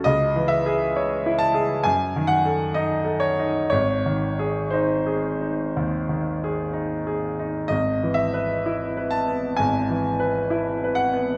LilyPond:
\new Staff \with { instrumentName = "Grand piano" } { \time 4/4 \key gis \phrygian \tempo 4 = 64 << { dis''8 e''4 a''8 gis''8 fis''8 dis''8 cis''8 | cis''4 bis'2 r4 | \key e \major dis''8 e''4 a''8 gis''4. fis''8 | } \\ { \tuplet 3/2 { cis,8 e8 gis'8 cis''8 e'8 gis'8 fis,8 dis8 a'8 dis'8 a'8 dis'8 } | \tuplet 3/2 { gis,,8 dis8 gis'8 dis'8 gis'8 dis'8 dis,8 dis8 gis'8 dis'8 gis'8 dis'8 } | \tuplet 3/2 { gis,,8 e8 b'8 e'8 b'8 b8 gis,,8 e8 b'8 e'8 b'8 b8 } | } >> }